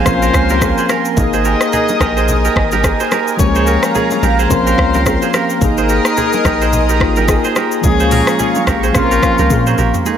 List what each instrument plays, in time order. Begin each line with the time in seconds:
Already playing: kora F4 G#4 A#4 C5, analog synth pad F5 G#5
0.03 sub bass A#1, tine electric piano F3 A#3 C4 C#4, horn section C#4 F4 C5, analog synth pad A#4 C6, kick, cross-stick, low conga, shaker
0.08 tine electric piano A#4
0.22 kora G4 A#4, shaker
0.34 sub bass C#2, kick, cross-stick, shaker
0.49 kora G4 A#4, low bongo, shaker
0.61 kick, cross-stick, high bongo, shaker
0.78 kora G#4 C5, shaker
0.89 kora G4 A#4, cross-stick, low bongo, shaker
1.05 shaker
1.15 sub bass G#1, tine electric piano A#3 D#4, horn section G#4 A#4 D#5, analog synth pad D#5 G#5 D#6, kick, low conga, shaker
1.20 tine electric piano G#4
1.33 kora G#4 C5, shaker
1.45 kora G4 A#4, shaker
1.61 cross-stick, shaker
1.73 kora D#4 G#4, high bongo, low conga, shaker
1.88 low bongo, shaker
2.00 sub bass A#1, kora G4 A#4, kick, cross-stick, low bongo, shaker
2.17 kora G#4 C5, shaker
2.28 low conga, shaker
2.45 kora G4 A#4, shaker
2.56 sub bass G#1, kick, cross-stick
2.72 kora G4 A#4, low bongo, shaker
2.84 kick, cross-stick, high bongo, shaker
3.00 kora G#4 C5, shaker
3.11 kora G4 A#4, cross-stick, low bongo, shaker
3.27 shaker
3.37 sub bass C#2, tine electric piano F3 G#3 A#3 C#4, horn section G#4 A#4 C#5, analog synth pad F5 A#5, kick, low conga, shaker
3.42 tine electric piano G4
3.48 tine electric piano G#4
3.55 kora G#4 C5, shaker
3.67 kora G4 A#4, shaker
3.83 cross-stick, shaker
3.95 kora F4 G#4, high bongo, low conga, shaker
4.11 low bongo, shaker
4.22 sub bass A#1, kora G4 A#4, low bongo, shaker
4.39 kora G#4 C5, shaker
4.48 sub bass A#1, tine electric piano F3 A#3 C4 C#4, horn section C#4 F4 C5, analog synth pad C6, kick, low conga, shaker
4.53 tine electric piano A#4
4.67 kora G4 A#4, shaker
4.78 sub bass C#2, kick, cross-stick
4.94 kora G4 A#4, low bongo, shaker
5.06 kick, cross-stick, high bongo, shaker
5.22 kora G#4 C5, shaker
5.33 kora G4 A#4, cross-stick, low bongo, shaker
5.50 shaker
5.59 sub bass G#1, tine electric piano A#3 D#4, horn section D#4 A#4, analog synth pad G#4 D#5 A#5 D#6, kick, low conga, shaker
5.64 tine electric piano G#4
5.78 kora G#4 C5, shaker
5.89 kora G4 A#4, shaker
6.05 cross-stick, shaker
6.17 kora D#4 G#4, high bongo, low conga, shaker
6.33 low bongo, shaker
6.45 sub bass A#1, kora G4 A#4, kick, cross-stick, low bongo, shaker
6.61 kora G#4 C5, shaker
6.73 low conga, shaker
6.89 kora G4 A#4, shaker
6.99 sub bass G#1, tine electric piano A#3 D#4 F4, kick, cross-stick
7.16 kora G4 A#4, low bongo, shaker
7.28 kick, cross-stick, high bongo, shaker
7.44 kora G#4 C5, shaker
7.56 kora G4 A#4, cross-stick, low bongo, shaker
7.72 shaker
7.81 sub bass C#2, tine electric piano F3 G#3 A#3 C#4, horn section C#4 F4 G#4, analog synth pad F5 A#5 C#6, kick, low conga, shaker
7.86 tine electric piano G#4
8.00 kora G#4 C5, shaker
8.11 kora G4 A#4, mid tom, open hi-hat, shaker
8.27 cross-stick, shaker
8.39 kora F4 G#4, high bongo, low conga, shaker
8.55 low bongo, shaker
8.67 sub bass A#1, kora G4 A#4, kick, cross-stick, low bongo, shaker
8.83 kora G#4 C5, shaker
8.92 sub bass A#1, tine electric piano F3 A#3 C4 C#4, horn section F3 C#4 F4, analog synth pad A#4 C6, kick, cross-stick, low conga, shaker
8.97 tine electric piano G#4
9.04 tine electric piano A#4
9.11 kora G4 A#4, shaker
9.22 kick, cross-stick, shaker
9.38 sub bass C#2, kora G4 A#4, low bongo, shaker
9.50 sub bass A#2, kick, high tom, high bongo, shaker
9.67 kora G#4 C5, shaker
9.78 sub bass A#1, kora G4 A#4, mid tom, low bongo, shaker
9.94 floor tom, shaker
10.03 tine electric piano G#3 A#3 D#4, analog synth pad G#3 D#4 A#4 D#5, kora D#4 G#4, shaker
10.08 tine electric piano A4